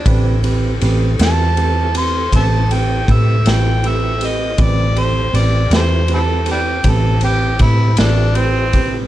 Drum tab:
RD |xxxxxxxxxxxx|xxxxxxxxxxxx|
SD |---o-----o--|---o-----o--|
BD |o-----o-o---|o-----o-o--o|